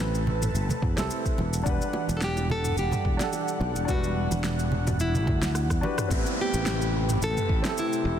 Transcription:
0.00 0.52 A1 loud
0.00 1.35 C3 medium
0.00 1.34 A3 medium
0.00 0.96 C4 medium
0.00 0.98 E4 medium
0.00 0.98 G4 medium
0.00 0.99 A4 medium
0.00 1.36 A4 loud
0.00 0.96 B4 medium
0.00 1.35 B4 medium
0.15 shaker soft
0.27 low conga medium
0.42 mid tom medium
0.42 high bongo medium
0.42 shaker medium
0.54 0.68 G1 medium
0.54 shaker soft
0.69 high conga medium
0.69 low conga medium
0.69 shaker soft
0.82 0.95 E2 medium
0.82 kick loud
0.82 mid tom medium
0.96 1.08 C2 medium
0.96 1.36 C4 medium
0.96 1.37 E4 medium
0.96 1.37 G4 medium
0.96 1.38 A4 medium
0.96 snare medium
0.96 high bongo medium
0.96 shaker medium
1.10 shaker medium
1.26 kick medium
1.26 shaker soft
1.38 1.62 E1 medium
1.38 6.07 E3 medium
1.38 6.07 G3 medium
1.38 6.07 D4 medium
1.38 6.06 F#5 medium
1.38 high bongo soft
1.38 high conga medium
1.53 shaker medium
1.63 1.79 E1 loud
1.63 3.15 D4 medium
1.63 3.17 G4 medium
1.63 3.16 F#5 medium
1.63 kick loud
1.63 shaker medium
1.69 3.18 B4 medium
1.82 shaker soft
1.93 high bongo medium
2.09 2.74 E1 loud
2.09 high conga medium
2.09 shaker medium
2.17 2.22 A4 medium
2.21 2.51 G4 loud
2.21 snare medium
2.21 shaker medium
2.37 high bongo medium
2.37 shaker soft
2.50 2.79 A4 loud
2.50 low conga medium
2.64 mid tom medium
2.64 shaker medium
2.77 2.90 E1 medium
2.77 3.85 G4 medium
2.77 shaker soft
2.92 mid tom medium
2.92 high bongo medium
2.92 high conga medium
2.92 low conga medium
2.92 shaker soft
3.05 3.18 E1 medium
3.05 kick loud
3.17 3.83 D4 medium
3.17 3.85 F#5 medium
3.17 snare medium
3.17 shaker medium
3.21 3.86 G4 medium
3.21 3.87 A4 medium
3.33 high bongo soft
3.33 shaker soft
3.48 shaker soft
3.61 3.73 B1 loud
3.61 high conga medium
3.76 4.28 E1 medium
3.76 shaker medium
3.85 5.37 D4 medium
3.85 5.38 F#4 medium
3.85 kick loud
3.85 high bongo medium
3.85 shaker soft
3.89 5.39 G3 medium
3.89 4.69 F#4 medium
3.89 5.40 B4 medium
4.04 shaker soft
4.31 5.27 E1 medium
4.31 high bongo soft
4.31 high conga medium
4.31 shaker medium
4.44 snare medium
4.44 shaker medium
4.59 shaker soft
4.72 low conga medium
4.87 mid tom medium
4.87 high bongo medium
4.87 shaker medium
5.00 5.79 E4 medium
5.00 shaker medium
5.15 high conga medium
5.15 low conga medium
5.15 shaker soft
5.27 5.70 D2 medium
5.27 kick loud
5.27 mid tom medium
5.27 high bongo medium
5.42 snare medium
5.42 shaker medium
5.55 cross-stick medium
5.55 shaker soft
5.70 5.81 E2 loud
5.70 kick medium
5.70 cross-stick medium
5.70 shaker soft
5.81 5.92 D4 medium
5.81 5.93 F#4 medium
5.81 5.93 G4 medium
5.81 5.94 B4 medium
5.81 high bongo medium
5.81 high conga medium
5.98 cross-stick medium
5.98 mid tom medium
5.98 shaker medium
6.08 6.23 A1 loud
6.08 8.19 C3 medium
6.08 8.19 A3 medium
6.08 7.60 C4 medium
6.08 7.61 E4 medium
6.08 8.19 G4 loud
6.08 7.62 G4 medium
6.08 8.19 B4 medium
6.08 kick loud
6.08 downlifter medium
6.08 shaker medium
6.14 7.63 B4 medium
6.26 shaker soft
6.41 7.23 G4 medium
6.54 7.19 A1 loud
6.54 shaker medium
6.66 snare medium
6.66 shaker medium
6.82 shaker soft
7.09 mid tom medium
7.09 shaker medium
7.22 7.35 A1 medium
7.22 7.80 A4 loud
7.22 shaker medium
7.37 mid tom medium
7.37 shaker soft
7.49 7.62 A1 medium
7.49 kick loud
7.62 8.19 C4 medium
7.62 8.19 E4 medium
7.62 snare medium
7.62 shaker medium
7.66 8.19 G4 medium
7.66 8.19 A4 medium
7.78 8.19 E4 medium
7.78 shaker medium
7.93 shaker soft
8.05 8.18 E1 loud

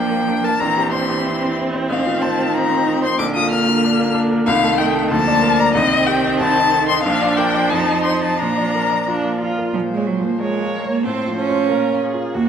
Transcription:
0.00 0.57 A#1 medium
0.00 0.56 F3 medium
0.00 0.56 A#3 medium
0.00 0.28 D4 medium
0.00 0.44 A#4 medium
0.00 0.46 G5 loud
0.11 0.38 A#3 medium
0.28 0.54 D4 medium
0.44 0.61 A#4 medium
0.44 0.61 A5 loud
0.60 1.87 A#1 medium
0.60 1.92 E3 medium
0.60 3.15 C4 medium
0.60 0.92 A#5 loud
0.77 1.03 G4 medium
0.92 1.19 C5 medium
0.92 1.56 C6 loud
1.09 1.36 G4 medium
1.26 1.52 E4 medium
1.43 1.68 C4 medium
1.58 1.84 E4 medium
1.74 1.90 C5 medium
1.89 3.15 A1 medium
1.89 3.19 D#3 medium
1.89 2.23 F5 loud
2.06 2.32 F4 medium
2.22 2.49 C5 medium
2.22 2.56 A5 loud
2.39 2.65 F4 medium
2.54 2.81 D#4 medium
2.54 3.03 A#5 loud
2.70 2.96 C4 medium
2.86 3.13 D#4 medium
3.02 3.19 C5 medium
3.02 3.18 C6 loud
3.19 4.44 A#1 medium
3.19 4.45 D3 medium
3.19 4.49 A#3 medium
3.19 3.25 D6 loud
3.35 3.61 F4 medium
3.35 3.50 D#6 loud
3.51 3.77 A#4 medium
3.51 4.14 F6 loud
3.68 3.93 F4 medium
3.84 4.09 D4 medium
3.99 4.25 A#3 medium
4.15 4.41 D4 medium
4.32 4.48 A#4 medium
4.46 5.10 C2 medium
4.46 5.13 D#3 medium
4.46 5.13 A3 medium
4.46 4.80 F5 loud
4.64 4.89 A4 medium
4.78 5.05 D#4 medium
4.78 5.10 G5 loud
4.95 5.11 A4 medium
5.10 5.74 D2 medium
5.10 5.75 F3 medium
5.10 5.77 A#3 medium
5.10 5.61 A5 loud
5.27 5.53 D5 medium
5.43 5.69 A#4 medium
5.59 5.76 D5 medium
5.59 5.74 A#5 loud
5.74 6.38 C2 medium
5.74 7.02 D#3 medium
5.74 7.05 C4 medium
5.74 6.08 D#5 loud
5.92 6.18 D#5 medium
6.07 6.34 G4 medium
6.07 6.39 G5 loud
6.25 6.41 D#5 medium
6.40 7.03 C2 medium
6.40 6.88 A5 loud
6.57 6.83 D#5 medium
6.73 6.99 A4 medium
6.89 7.05 D#5 medium
6.89 7.03 C6 loud
7.03 7.70 A#1 medium
7.03 9.49 F3 medium
7.03 7.73 D4 medium
7.03 7.38 F5 loud
7.22 7.48 D5 medium
7.37 7.65 A#4 medium
7.37 7.71 G5 loud
7.54 7.71 D5 medium
7.70 8.37 F2 medium
7.70 8.39 D#4 medium
7.70 8.03 A5 loud
7.88 8.15 D#5 medium
8.03 8.32 C5 medium
8.03 8.21 C6 loud
8.22 8.39 D#5 medium
8.22 8.40 A5 medium
8.39 9.71 A#2 medium
8.39 8.99 D4 medium
8.39 9.40 A#5 loud
8.57 8.84 D5 medium
8.75 9.01 A#4 medium
8.91 9.17 D5 medium
9.07 9.38 D4 medium
9.07 9.34 F4 medium
9.24 9.51 A#3 medium
9.40 9.73 F4 medium
9.40 9.68 F4 medium
9.58 9.74 A#4 medium
9.74 11.02 A#2 medium
9.74 9.80 F3 medium
9.74 10.41 C5 medium
9.92 10.08 G#3 medium
9.97 10.32 C#5 medium
10.07 10.26 F#3 medium
10.19 10.53 F3 soft
10.24 10.39 A#3 medium
10.39 10.87 G#3 medium
10.39 11.04 A#4 medium
10.39 11.01 C#5 medium
10.39 10.75 C#5 soft
10.62 10.97 F4 soft
10.84 11.05 C#5 soft
10.89 11.06 A#3 medium
11.04 11.68 A2 medium
11.04 11.36 C4 medium
11.04 11.71 A4 medium
11.04 11.68 C5 medium
11.27 11.61 F3 soft
11.36 12.00 C#4 medium
11.49 11.68 F4 soft
11.49 11.68 C5 medium
11.69 12.32 A#2 medium
11.69 12.34 F4 medium
11.69 12.01 A#4 medium
11.92 12.26 A#3 medium
12.03 12.36 G#4 medium
12.14 12.32 F4 soft
12.14 12.33 A#4 soft
12.34 12.49 D#2 medium
12.34 12.49 A#3 medium
12.34 12.49 F#4 medium

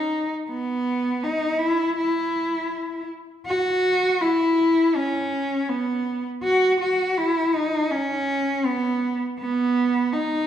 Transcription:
0.00 0.32 D#4 medium
0.50 1.26 B3 medium
1.24 1.61 D#4 medium
1.60 1.97 E4 medium
1.97 3.05 E4 medium
3.46 4.23 F#4 loud
4.21 4.97 E4 medium
4.96 5.70 C#4 medium
5.69 6.25 B3 medium
6.44 6.78 F#4 medium
6.81 7.19 F#4 medium
7.18 7.56 E4 medium
7.54 7.93 D#4 medium
7.92 8.68 C#4 medium
8.66 9.21 B3 medium
9.40 10.15 B3 medium
10.13 10.47 D#4 medium

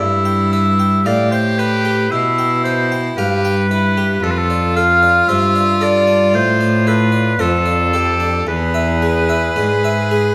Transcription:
0.00 1.02 G2 soft
0.00 1.07 G2 medium
0.00 1.04 E4 medium
0.00 0.52 E5 medium
0.25 0.54 G5 soft
0.52 0.81 B4 soft
0.52 1.08 E5 loud
0.80 1.07 G5 medium
1.06 2.12 A2 medium
1.06 2.08 A2 medium
1.06 2.10 G4 medium
1.06 1.31 D5 medium
1.06 1.33 F5 soft
1.31 1.60 C5 medium
1.31 1.60 G5 medium
1.58 2.13 B4 medium
1.58 1.87 B4 medium
1.85 2.13 G4 medium
2.11 3.14 B2 medium
2.11 3.16 B2 medium
2.11 3.19 E4 medium
2.11 2.63 E5 loud
2.38 2.66 G5 medium
2.64 2.93 B4 medium
2.64 2.98 C5 loud
2.92 3.19 G5 medium
3.17 4.21 G2 medium
3.17 4.20 G2 medium
3.17 3.70 G4 medium
3.17 4.25 B4 medium
3.17 3.44 F5 medium
3.45 3.72 G5 medium
3.70 4.21 E4 medium
3.70 3.99 B4 medium
3.97 4.24 G4 medium
4.22 5.26 F2 medium
4.22 5.25 F2 medium
4.22 7.35 F4 loud
4.22 4.32 A4 loud
4.31 4.39 B4 medium
4.37 4.75 A4 medium
4.50 4.78 D5 medium
4.76 5.04 A4 soft
4.76 5.30 F5 loud
5.03 5.30 D5 medium
5.29 6.35 G2 medium
5.29 6.30 G2 medium
5.29 5.55 C5 soft
5.29 5.83 E5 loud
5.56 5.83 D5 medium
5.81 6.09 A4 medium
5.81 6.34 D5 loud
6.08 6.35 D4 medium
6.34 7.36 A2 medium
6.34 7.39 A2 medium
6.34 6.88 C5 loud
6.61 6.88 D5 medium
6.87 7.15 A4 medium
6.87 7.42 B4 medium
7.12 7.41 D5 soft
7.39 8.43 F2 medium
7.39 8.46 F2 medium
7.39 7.95 F4 medium
7.39 8.47 A4 loud
7.39 7.66 C5 medium
7.66 7.94 D5 medium
7.93 8.48 G4 medium
7.93 8.22 A4 medium
8.20 8.47 D4 medium
8.47 9.52 E2 medium
8.47 9.54 E2 medium
8.47 10.35 G#4 medium
8.47 10.35 B4 medium
8.74 9.03 E5 soft
9.02 9.31 G#4 soft
9.29 9.58 E5 medium
9.56 10.35 G#2 medium
9.56 9.84 D5 soft
9.84 10.12 E5 medium
10.11 10.35 G#4 soft

